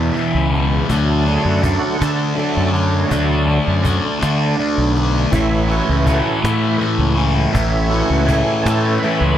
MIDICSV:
0, 0, Header, 1, 5, 480
1, 0, Start_track
1, 0, Tempo, 739827
1, 587, Time_signature, 6, 3, 24, 8
1, 6085, End_track
2, 0, Start_track
2, 0, Title_t, "Tonewheel organ"
2, 0, Program_c, 0, 16
2, 0, Note_on_c, 0, 64, 82
2, 311, Note_off_c, 0, 64, 0
2, 575, Note_on_c, 0, 54, 56
2, 581, Note_on_c, 0, 62, 66
2, 587, Note_on_c, 0, 57, 54
2, 847, Note_on_c, 0, 68, 95
2, 951, Note_on_c, 0, 66, 92
2, 960, Note_off_c, 0, 68, 0
2, 1070, Note_off_c, 0, 66, 0
2, 1078, Note_on_c, 0, 66, 92
2, 1275, Note_off_c, 0, 54, 0
2, 1278, Note_off_c, 0, 62, 0
2, 1281, Note_off_c, 0, 57, 0
2, 1306, Note_on_c, 0, 69, 96
2, 1319, Note_off_c, 0, 66, 0
2, 1517, Note_on_c, 0, 57, 43
2, 1524, Note_on_c, 0, 54, 46
2, 1524, Note_on_c, 0, 62, 52
2, 1747, Note_off_c, 0, 57, 0
2, 1750, Note_off_c, 0, 62, 0
2, 1751, Note_off_c, 0, 54, 0
2, 1766, Note_on_c, 0, 61, 84
2, 1801, Note_off_c, 0, 69, 0
2, 1990, Note_on_c, 0, 54, 54
2, 1994, Note_on_c, 0, 57, 48
2, 1998, Note_on_c, 0, 62, 83
2, 2024, Note_off_c, 0, 61, 0
2, 2327, Note_off_c, 0, 54, 0
2, 2329, Note_off_c, 0, 57, 0
2, 3190, Note_off_c, 0, 62, 0
2, 3449, Note_on_c, 0, 52, 54
2, 3450, Note_on_c, 0, 57, 55
2, 3453, Note_on_c, 0, 61, 63
2, 3453, Note_on_c, 0, 64, 87
2, 3700, Note_on_c, 0, 66, 87
2, 3707, Note_off_c, 0, 64, 0
2, 3814, Note_off_c, 0, 66, 0
2, 3820, Note_on_c, 0, 68, 97
2, 3875, Note_off_c, 0, 68, 0
2, 3939, Note_on_c, 0, 66, 90
2, 4151, Note_off_c, 0, 52, 0
2, 4151, Note_off_c, 0, 57, 0
2, 4153, Note_off_c, 0, 61, 0
2, 4183, Note_on_c, 0, 64, 73
2, 4190, Note_off_c, 0, 66, 0
2, 4407, Note_off_c, 0, 64, 0
2, 4880, Note_on_c, 0, 52, 59
2, 4880, Note_on_c, 0, 64, 89
2, 4882, Note_on_c, 0, 57, 50
2, 4889, Note_on_c, 0, 61, 61
2, 5117, Note_on_c, 0, 66, 85
2, 5140, Note_off_c, 0, 64, 0
2, 5360, Note_on_c, 0, 68, 93
2, 5378, Note_off_c, 0, 66, 0
2, 5594, Note_on_c, 0, 69, 89
2, 5619, Note_off_c, 0, 68, 0
2, 5831, Note_off_c, 0, 69, 0
2, 5836, Note_on_c, 0, 71, 90
2, 6085, Note_off_c, 0, 52, 0
2, 6085, Note_off_c, 0, 57, 0
2, 6085, Note_off_c, 0, 61, 0
2, 6085, Note_off_c, 0, 71, 0
2, 6085, End_track
3, 0, Start_track
3, 0, Title_t, "Distorted electric guitar"
3, 0, Program_c, 1, 30
3, 0, Note_on_c, 1, 40, 75
3, 0, Note_on_c, 1, 47, 66
3, 0, Note_on_c, 1, 52, 72
3, 81, Note_off_c, 1, 40, 0
3, 89, Note_on_c, 1, 40, 78
3, 92, Note_off_c, 1, 47, 0
3, 100, Note_off_c, 1, 52, 0
3, 100, Note_on_c, 1, 47, 77
3, 108, Note_on_c, 1, 52, 82
3, 325, Note_off_c, 1, 52, 0
3, 333, Note_on_c, 1, 52, 71
3, 340, Note_off_c, 1, 47, 0
3, 348, Note_on_c, 1, 47, 59
3, 564, Note_off_c, 1, 40, 0
3, 565, Note_off_c, 1, 52, 0
3, 570, Note_off_c, 1, 47, 0
3, 573, Note_on_c, 1, 50, 102
3, 579, Note_on_c, 1, 57, 101
3, 591, Note_on_c, 1, 62, 107
3, 810, Note_off_c, 1, 62, 0
3, 812, Note_on_c, 1, 62, 67
3, 827, Note_off_c, 1, 57, 0
3, 830, Note_on_c, 1, 57, 54
3, 1049, Note_off_c, 1, 50, 0
3, 1052, Note_on_c, 1, 50, 74
3, 1055, Note_off_c, 1, 57, 0
3, 1058, Note_on_c, 1, 57, 70
3, 1065, Note_off_c, 1, 62, 0
3, 1067, Note_on_c, 1, 62, 81
3, 1285, Note_off_c, 1, 62, 0
3, 1292, Note_on_c, 1, 62, 77
3, 1307, Note_off_c, 1, 57, 0
3, 1309, Note_on_c, 1, 57, 60
3, 1525, Note_off_c, 1, 50, 0
3, 1533, Note_on_c, 1, 50, 72
3, 1543, Note_off_c, 1, 57, 0
3, 1544, Note_off_c, 1, 62, 0
3, 1545, Note_on_c, 1, 57, 70
3, 1552, Note_on_c, 1, 62, 86
3, 1763, Note_off_c, 1, 62, 0
3, 1771, Note_on_c, 1, 62, 67
3, 1788, Note_off_c, 1, 57, 0
3, 1790, Note_on_c, 1, 57, 56
3, 1998, Note_off_c, 1, 50, 0
3, 2006, Note_on_c, 1, 50, 84
3, 2014, Note_off_c, 1, 57, 0
3, 2017, Note_off_c, 1, 62, 0
3, 2017, Note_on_c, 1, 57, 94
3, 2024, Note_on_c, 1, 62, 107
3, 2241, Note_off_c, 1, 62, 0
3, 2249, Note_on_c, 1, 62, 61
3, 2262, Note_off_c, 1, 57, 0
3, 2264, Note_on_c, 1, 57, 53
3, 2478, Note_off_c, 1, 50, 0
3, 2485, Note_on_c, 1, 50, 67
3, 2491, Note_off_c, 1, 57, 0
3, 2494, Note_on_c, 1, 57, 77
3, 2497, Note_off_c, 1, 62, 0
3, 2505, Note_on_c, 1, 62, 70
3, 2713, Note_off_c, 1, 62, 0
3, 2721, Note_on_c, 1, 62, 74
3, 2735, Note_off_c, 1, 57, 0
3, 2738, Note_on_c, 1, 57, 67
3, 2959, Note_off_c, 1, 50, 0
3, 2966, Note_on_c, 1, 50, 69
3, 2972, Note_off_c, 1, 57, 0
3, 2975, Note_on_c, 1, 57, 71
3, 2976, Note_off_c, 1, 62, 0
3, 2984, Note_on_c, 1, 62, 86
3, 3205, Note_off_c, 1, 62, 0
3, 3213, Note_on_c, 1, 62, 63
3, 3227, Note_off_c, 1, 57, 0
3, 3229, Note_on_c, 1, 57, 55
3, 3442, Note_off_c, 1, 50, 0
3, 3445, Note_off_c, 1, 62, 0
3, 3452, Note_on_c, 1, 45, 86
3, 3461, Note_off_c, 1, 57, 0
3, 3463, Note_on_c, 1, 52, 96
3, 3470, Note_on_c, 1, 57, 108
3, 3684, Note_off_c, 1, 57, 0
3, 3686, Note_on_c, 1, 57, 64
3, 3701, Note_off_c, 1, 52, 0
3, 3704, Note_on_c, 1, 52, 52
3, 3928, Note_off_c, 1, 45, 0
3, 3930, Note_on_c, 1, 45, 67
3, 3939, Note_off_c, 1, 52, 0
3, 3941, Note_on_c, 1, 52, 81
3, 3947, Note_off_c, 1, 57, 0
3, 3950, Note_on_c, 1, 57, 78
3, 4162, Note_off_c, 1, 57, 0
3, 4165, Note_on_c, 1, 57, 78
3, 4176, Note_off_c, 1, 52, 0
3, 4179, Note_on_c, 1, 52, 67
3, 4397, Note_off_c, 1, 45, 0
3, 4400, Note_on_c, 1, 45, 75
3, 4407, Note_off_c, 1, 52, 0
3, 4410, Note_on_c, 1, 52, 80
3, 4417, Note_off_c, 1, 57, 0
3, 4419, Note_on_c, 1, 57, 74
3, 4635, Note_off_c, 1, 57, 0
3, 4637, Note_on_c, 1, 57, 66
3, 4654, Note_off_c, 1, 52, 0
3, 4656, Note_on_c, 1, 52, 59
3, 4882, Note_off_c, 1, 45, 0
3, 4884, Note_on_c, 1, 45, 85
3, 4889, Note_off_c, 1, 52, 0
3, 4892, Note_on_c, 1, 52, 97
3, 4900, Note_off_c, 1, 57, 0
3, 4903, Note_on_c, 1, 57, 104
3, 5122, Note_off_c, 1, 57, 0
3, 5125, Note_on_c, 1, 57, 71
3, 5139, Note_off_c, 1, 52, 0
3, 5142, Note_on_c, 1, 52, 51
3, 5357, Note_off_c, 1, 45, 0
3, 5359, Note_on_c, 1, 45, 69
3, 5369, Note_off_c, 1, 52, 0
3, 5372, Note_on_c, 1, 52, 77
3, 5376, Note_off_c, 1, 57, 0
3, 5379, Note_on_c, 1, 57, 84
3, 5606, Note_off_c, 1, 57, 0
3, 5609, Note_on_c, 1, 57, 77
3, 5623, Note_off_c, 1, 52, 0
3, 5625, Note_on_c, 1, 52, 68
3, 5842, Note_off_c, 1, 45, 0
3, 5844, Note_on_c, 1, 45, 73
3, 5856, Note_off_c, 1, 52, 0
3, 5859, Note_on_c, 1, 52, 74
3, 5864, Note_off_c, 1, 57, 0
3, 5866, Note_on_c, 1, 57, 77
3, 6085, Note_off_c, 1, 45, 0
3, 6085, Note_off_c, 1, 52, 0
3, 6085, Note_off_c, 1, 57, 0
3, 6085, End_track
4, 0, Start_track
4, 0, Title_t, "Fingered electric bass"
4, 0, Program_c, 2, 33
4, 223, Note_on_c, 2, 37, 83
4, 525, Note_off_c, 2, 37, 0
4, 584, Note_on_c, 2, 38, 94
4, 886, Note_off_c, 2, 38, 0
4, 940, Note_on_c, 2, 42, 85
4, 1143, Note_off_c, 2, 42, 0
4, 1307, Note_on_c, 2, 50, 106
4, 1507, Note_off_c, 2, 50, 0
4, 1666, Note_on_c, 2, 42, 84
4, 1966, Note_off_c, 2, 42, 0
4, 2022, Note_on_c, 2, 38, 94
4, 2324, Note_off_c, 2, 38, 0
4, 2383, Note_on_c, 2, 42, 80
4, 2585, Note_off_c, 2, 42, 0
4, 2742, Note_on_c, 2, 50, 99
4, 2944, Note_off_c, 2, 50, 0
4, 3099, Note_on_c, 2, 35, 80
4, 3402, Note_off_c, 2, 35, 0
4, 3454, Note_on_c, 2, 33, 97
4, 3759, Note_off_c, 2, 33, 0
4, 3822, Note_on_c, 2, 37, 86
4, 4024, Note_off_c, 2, 37, 0
4, 4176, Note_on_c, 2, 45, 99
4, 4380, Note_off_c, 2, 45, 0
4, 4530, Note_on_c, 2, 37, 79
4, 4836, Note_off_c, 2, 37, 0
4, 4894, Note_on_c, 2, 33, 94
4, 5199, Note_off_c, 2, 33, 0
4, 5254, Note_on_c, 2, 37, 82
4, 5458, Note_off_c, 2, 37, 0
4, 5615, Note_on_c, 2, 45, 95
4, 5818, Note_off_c, 2, 45, 0
4, 5973, Note_on_c, 2, 37, 81
4, 6085, Note_off_c, 2, 37, 0
4, 6085, End_track
5, 0, Start_track
5, 0, Title_t, "Cajon"
5, 105, Note_on_c, 9, 38, 40
5, 169, Note_off_c, 9, 38, 0
5, 352, Note_on_c, 9, 38, 36
5, 417, Note_off_c, 9, 38, 0
5, 582, Note_on_c, 9, 36, 105
5, 647, Note_off_c, 9, 36, 0
5, 824, Note_on_c, 9, 38, 38
5, 889, Note_off_c, 9, 38, 0
5, 1061, Note_on_c, 9, 36, 81
5, 1126, Note_off_c, 9, 36, 0
5, 1309, Note_on_c, 9, 38, 101
5, 1373, Note_off_c, 9, 38, 0
5, 1544, Note_on_c, 9, 38, 38
5, 1609, Note_off_c, 9, 38, 0
5, 1782, Note_on_c, 9, 38, 33
5, 1847, Note_off_c, 9, 38, 0
5, 2019, Note_on_c, 9, 36, 105
5, 2084, Note_off_c, 9, 36, 0
5, 2258, Note_on_c, 9, 38, 33
5, 2323, Note_off_c, 9, 38, 0
5, 2497, Note_on_c, 9, 36, 78
5, 2562, Note_off_c, 9, 36, 0
5, 2741, Note_on_c, 9, 38, 102
5, 2806, Note_off_c, 9, 38, 0
5, 2980, Note_on_c, 9, 38, 37
5, 3045, Note_off_c, 9, 38, 0
5, 3217, Note_on_c, 9, 38, 33
5, 3282, Note_off_c, 9, 38, 0
5, 3456, Note_on_c, 9, 36, 102
5, 3521, Note_off_c, 9, 36, 0
5, 3703, Note_on_c, 9, 38, 35
5, 3768, Note_off_c, 9, 38, 0
5, 3936, Note_on_c, 9, 36, 79
5, 4001, Note_off_c, 9, 36, 0
5, 4183, Note_on_c, 9, 38, 109
5, 4248, Note_off_c, 9, 38, 0
5, 4417, Note_on_c, 9, 38, 41
5, 4482, Note_off_c, 9, 38, 0
5, 4662, Note_on_c, 9, 38, 39
5, 4727, Note_off_c, 9, 38, 0
5, 4897, Note_on_c, 9, 36, 112
5, 4962, Note_off_c, 9, 36, 0
5, 5143, Note_on_c, 9, 38, 39
5, 5208, Note_off_c, 9, 38, 0
5, 5376, Note_on_c, 9, 36, 76
5, 5441, Note_off_c, 9, 36, 0
5, 5622, Note_on_c, 9, 38, 112
5, 5687, Note_off_c, 9, 38, 0
5, 5860, Note_on_c, 9, 38, 35
5, 5925, Note_off_c, 9, 38, 0
5, 6085, End_track
0, 0, End_of_file